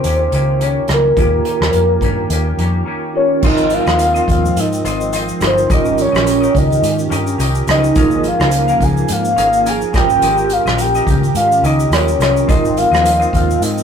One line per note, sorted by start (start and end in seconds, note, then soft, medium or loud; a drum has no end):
0.00 0.26 D#2 medium
0.00 0.31 D#3 medium
0.00 1.12 C#4 medium
0.00 1.13 F4 medium
0.00 1.14 G4 medium
0.00 1.15 A#4 medium
0.00 0.65 C5 loud
0.00 closed hi-hat medium
0.05 0.32 A#3 medium
0.05 0.33 C#4 medium
0.05 0.33 G4 medium
0.32 0.77 C#2 medium
0.32 0.59 D#3 medium
0.32 0.60 A#3 medium
0.32 0.61 C#4 medium
0.32 0.61 G4 medium
0.32 closed hi-hat medium
0.60 1.16 D#3 medium
0.60 1.17 A#3 medium
0.60 1.17 C#4 medium
0.60 1.18 G4 medium
0.60 0.90 C#5 loud
0.60 closed hi-hat medium
0.88 1.11 C#2 medium
0.88 cross-stick medium
0.88 closed hi-hat soft
0.94 1.18 A#4 medium
1.15 1.39 D#2 loud
1.15 1.61 D#3 medium
1.15 1.61 A#3 medium
1.15 3.10 C#4 medium
1.15 1.61 C#4 medium
1.15 3.11 F4 medium
1.15 3.12 G4 medium
1.15 1.60 G4 medium
1.15 kick loud
1.15 closed hi-hat medium
1.20 2.84 A#4 loud
1.20 3.13 A#4 medium
1.45 closed hi-hat medium
1.61 1.71 D#2 medium
1.61 2.02 A#3 soft
1.61 2.03 C#4 soft
1.61 2.02 G4 medium
1.61 cross-stick medium
1.73 1.96 F2 medium
1.73 closed hi-hat medium
2.01 2.24 G2 medium
2.01 2.29 D#3 medium
2.01 2.30 A#3 medium
2.01 2.31 C#4 medium
2.01 kick medium
2.01 closed hi-hat soft
2.05 2.32 G4 medium
2.29 2.52 D#2 medium
2.29 2.57 D#3 medium
2.29 2.58 A#3 medium
2.29 2.59 C#4 medium
2.29 2.60 G4 medium
2.29 closed hi-hat medium
2.57 2.80 F2 medium
2.57 2.84 D#3 medium
2.57 2.85 A#3 medium
2.57 2.86 C#4 medium
2.57 2.87 G4 medium
2.57 closed hi-hat medium
2.85 3.43 D#3 medium
2.85 3.43 A#3 medium
2.85 3.44 C#4 medium
2.85 3.44 G4 medium
3.13 3.42 C#4 soft
3.13 3.42 F4 soft
3.13 3.43 G4 soft
3.13 3.43 A#4 medium
3.13 3.48 C#5 medium
3.41 3.78 G#1 loud
3.41 5.67 F3 medium
3.41 5.67 G#3 medium
3.41 3.87 G#3 medium
3.41 5.36 C4 medium
3.41 5.67 C4 medium
3.41 3.87 C4 medium
3.41 5.37 D#4 medium
3.41 3.87 F4 medium
3.41 5.38 F4 medium
3.41 kick loud
3.41 crash loud
3.41 tambourine medium
3.45 5.38 A#4 medium
3.45 3.87 C5 medium
3.45 3.85 D#5 medium
3.45 3.75 D#5 loud
3.57 shaker soft
3.70 4.29 F5 loud
3.70 closed hi-hat medium
3.70 tambourine medium
3.70 shaker medium
3.86 4.19 D#2 medium
3.86 4.16 F4 soft
3.86 4.15 C5 medium
3.86 4.13 D#5 medium
3.86 cross-stick medium
3.86 tambourine soft
3.86 shaker soft
3.99 closed hi-hat medium
3.99 tambourine medium
3.99 shaker medium
4.14 4.84 F4 soft
4.14 4.85 C5 soft
4.14 4.87 D#5 medium
4.14 shaker medium
4.28 4.50 D#2 medium
4.28 4.61 F5 medium
4.28 kick medium
4.28 closed hi-hat medium
4.28 tambourine soft
4.28 shaker medium
4.45 shaker medium
4.56 4.79 G#2 loud
4.56 5.15 D#5 medium
4.56 closed hi-hat medium
4.56 tambourine soft
4.56 shaker medium
4.73 tambourine soft
4.73 shaker medium
4.84 5.30 G#1 medium
4.84 5.12 C4 medium
4.84 5.12 F4 medium
4.84 5.14 C5 medium
4.84 5.14 D#5 medium
4.84 closed hi-hat medium
4.84 tambourine soft
4.84 shaker medium
5.01 shaker medium
5.13 5.39 C4 medium
5.13 5.41 F4 medium
5.13 5.42 C5 medium
5.13 5.42 D#5 medium
5.13 closed hi-hat medium
5.13 tambourine medium
5.13 shaker medium
5.28 shaker medium
5.40 5.64 G1 loud
5.40 5.69 C4 medium
5.40 5.69 C4 soft
5.40 5.69 D#4 soft
5.40 5.70 F4 medium
5.40 5.68 F4 soft
5.40 5.70 A#4 medium
5.40 5.70 C5 medium
5.40 5.70 D#5 medium
5.40 cross-stick medium
5.40 closed hi-hat medium
5.40 tambourine soft
5.40 shaker soft
5.47 5.70 C5 medium
5.58 shaker medium
5.68 6.05 G#1 loud
5.68 7.93 D#3 medium
5.68 6.13 G#3 medium
5.68 7.91 C#4 medium
5.68 9.89 C#4 medium
5.68 6.13 C#4 medium
5.68 7.91 F4 medium
5.68 7.93 G4 medium
5.68 6.14 G4 medium
5.68 7.92 G4 medium
5.68 6.13 A#4 medium
5.68 6.11 D#5 medium
5.68 kick loud
5.68 closed hi-hat medium
5.68 tambourine medium
5.68 shaker medium
5.72 7.93 A#4 medium
5.72 5.98 D#5 loud
5.85 shaker soft
5.98 6.59 C#5 loud
5.98 closed hi-hat medium
5.98 tambourine soft
5.98 shaker medium
6.12 6.46 A#1 medium
6.12 6.43 G4 soft
6.12 6.41 A#4 soft
6.12 6.39 D#5 soft
6.12 cross-stick loud
6.12 tambourine soft
6.12 shaker soft
6.27 closed hi-hat medium
6.27 tambourine medium
6.27 shaker medium
6.41 7.10 G4 soft
6.41 7.12 A#4 soft
6.41 7.10 D#5 medium
6.41 shaker medium
6.54 6.77 C#2 medium
6.54 7.12 D#5 medium
6.54 kick medium
6.54 closed hi-hat medium
6.54 tambourine soft
6.54 shaker medium
6.71 tambourine soft
6.71 shaker medium
6.82 7.05 G#2 loud
6.82 closed hi-hat medium
6.82 tambourine soft
6.82 shaker medium
6.99 tambourine soft
6.99 shaker medium
7.10 7.34 G2 medium
7.10 7.37 C#4 medium
7.10 7.39 G4 medium
7.10 7.40 A#4 medium
7.10 7.40 D#5 medium
7.10 closed hi-hat medium
7.10 tambourine soft
7.10 shaker medium
7.27 shaker medium
7.38 7.61 C2 medium
7.38 7.66 C#4 medium
7.38 7.67 G4 medium
7.38 7.68 A#4 medium
7.38 7.68 D#5 medium
7.38 closed hi-hat medium
7.38 tambourine medium
7.38 shaker medium
7.55 shaker medium
7.67 7.90 C#2 medium
7.67 7.95 C#4 medium
7.67 7.96 G4 medium
7.67 7.96 A#4 medium
7.67 7.97 D#5 medium
7.67 8.29 D#5 loud
7.67 cross-stick medium
7.67 closed hi-hat medium
7.67 tambourine medium
7.67 shaker medium
7.84 shaker medium
7.94 8.31 G#1 loud
7.94 9.91 F3 medium
7.94 8.40 G#3 medium
7.94 9.91 A#3 medium
7.94 8.40 C#4 medium
7.94 9.89 D#4 medium
7.94 9.90 F4 medium
7.94 8.40 G#4 medium
7.94 9.90 G#4 medium
7.94 8.40 A#4 medium
7.94 8.39 F5 medium
7.94 kick loud
7.94 closed hi-hat medium
7.94 tambourine medium
7.94 shaker medium
7.99 9.91 A#4 medium
8.11 shaker soft
8.24 8.85 F5 loud
8.24 closed hi-hat medium
8.24 tambourine medium
8.24 shaker medium
8.39 8.72 C#2 medium
8.39 8.70 G#4 soft
8.39 8.68 A#4 soft
8.39 8.67 F5 medium
8.39 cross-stick medium
8.39 shaker soft
8.51 closed hi-hat medium
8.51 tambourine medium
8.51 shaker medium
8.68 9.37 G#4 soft
8.68 9.38 A#4 soft
8.68 9.37 F5 medium
8.68 tambourine soft
8.68 shaker medium
8.80 9.03 C#2 medium
8.80 9.14 G#5 loud
8.80 kick medium
8.80 closed hi-hat soft
8.80 tambourine soft
8.80 shaker medium
8.97 shaker soft
9.08 9.32 G#2 loud
9.08 9.70 F5 loud
9.08 closed hi-hat medium
9.08 tambourine soft
9.08 shaker medium
9.25 shaker medium
9.36 9.82 G#1 medium
9.36 9.63 C#4 medium
9.36 9.65 G#4 medium
9.36 9.66 A#4 medium
9.36 9.67 F5 medium
9.36 closed hi-hat medium
9.36 tambourine soft
9.36 shaker medium
9.53 shaker medium
9.65 9.92 C#4 medium
9.65 9.94 G#4 medium
9.65 9.94 A#4 medium
9.65 9.95 F5 medium
9.65 closed hi-hat medium
9.65 tambourine medium
9.65 shaker medium
9.69 9.95 G#5 loud
9.81 shaker medium
9.92 10.16 G#1 loud
9.92 12.46 D#3 medium
9.92 11.87 C#4 medium
9.92 10.21 C#4 medium
9.92 12.46 C#4 medium
9.92 11.88 F4 medium
9.92 12.46 G4 medium
9.92 10.21 G4 medium
9.92 11.89 G4 medium
9.92 10.22 A#4 medium
9.92 10.23 D#5 medium
9.92 kick loud
9.92 cross-stick medium
9.92 closed hi-hat medium
9.92 tambourine soft
9.92 shaker soft
9.97 11.90 A#4 medium
9.97 10.54 G5 loud
10.10 shaker medium
10.21 10.57 G#1 loud
10.21 10.66 G#3 medium
10.21 10.66 C#4 medium
10.21 10.66 G4 medium
10.21 10.66 A#4 medium
10.21 10.65 D#5 medium
10.21 closed hi-hat medium
10.21 tambourine medium
10.21 shaker medium
10.37 shaker soft
10.50 10.82 F5 loud
10.50 closed hi-hat medium
10.50 tambourine medium
10.50 shaker medium
10.65 10.98 A#1 medium
10.65 10.96 G4 soft
10.65 10.95 A#4 medium
10.65 10.94 D#5 medium
10.65 cross-stick medium
10.65 tambourine soft
10.65 shaker soft
10.78 11.08 G5 loud
10.78 closed hi-hat medium
10.78 tambourine medium
10.78 shaker medium
10.95 11.64 G4 soft
10.95 11.65 A#4 soft
10.95 11.66 D#5 soft
10.95 tambourine soft
10.95 shaker medium
11.07 11.29 C#2 medium
11.07 11.35 G5 medium
11.07 kick medium
11.07 closed hi-hat medium
11.07 tambourine soft
11.07 shaker medium
11.23 tambourine soft
11.23 shaker medium
11.35 11.57 G#2 loud
11.35 11.66 F5 loud
11.35 closed hi-hat medium
11.35 tambourine soft
11.35 shaker medium
11.52 tambourine soft
11.52 shaker medium
11.62 11.85 C#2 medium
11.62 11.91 C#4 medium
11.62 11.92 G4 medium
11.62 11.93 A#4 medium
11.62 11.96 D#5 medium
11.62 closed hi-hat medium
11.62 tambourine soft
11.62 shaker medium
11.67 11.93 D#5 medium
11.80 shaker medium
11.90 12.13 D#2 medium
11.90 12.48 C#4 medium
11.90 12.19 C#4 medium
11.90 12.49 F4 soft
11.90 12.49 G4 soft
11.90 12.20 G4 medium
11.90 12.21 A#4 medium
11.90 12.50 A#4 medium
11.90 12.21 C#5 medium
11.90 cross-stick loud
11.90 closed hi-hat medium
11.90 tambourine medium
11.90 shaker medium
11.95 12.22 D#5 medium
12.08 shaker medium
12.19 12.42 C2 medium
12.19 12.48 C#4 medium
12.19 12.49 G4 medium
12.19 12.49 A#4 medium
12.19 12.50 C#5 medium
12.19 cross-stick medium
12.19 closed hi-hat medium
12.19 tambourine soft
12.19 shaker medium
12.23 12.49 D#5 medium
12.37 shaker medium
12.47 12.83 G#1 loud
12.47 13.83 F3 medium
12.47 12.92 G#3 medium
12.47 13.83 G#3 medium
12.47 13.83 C4 medium
12.47 12.92 C4 medium
12.47 13.83 C4 medium
12.47 13.83 D#4 medium
12.47 12.92 F4 medium
12.47 13.83 F4 medium
12.47 12.92 C5 medium
12.47 12.79 D#5 loud
12.47 12.90 D#5 medium
12.47 kick loud
12.47 closed hi-hat medium
12.47 tambourine medium
12.47 shaker medium
12.52 13.83 A#4 medium
12.65 shaker medium
12.77 13.34 F5 loud
12.77 closed hi-hat medium
12.77 tambourine medium
12.77 shaker medium
12.91 13.24 D#2 medium
12.91 13.21 F4 soft
12.91 13.20 C5 medium
12.91 13.18 D#5 medium
12.91 cross-stick medium
12.91 tambourine soft
12.91 shaker soft
13.06 closed hi-hat medium
13.06 tambourine medium
13.06 shaker medium
13.20 13.83 F4 soft
13.20 13.83 C5 medium
13.20 13.83 D#5 medium
13.20 shaker medium
13.33 13.56 D#2 medium
13.33 13.64 F5 medium
13.33 kick medium
13.33 closed hi-hat medium
13.33 tambourine soft
13.33 shaker medium
13.50 shaker medium
13.61 13.83 G#2 loud
13.61 13.83 D#5 medium
13.61 closed hi-hat medium
13.61 tambourine soft
13.61 shaker medium
13.78 tambourine soft
13.78 shaker medium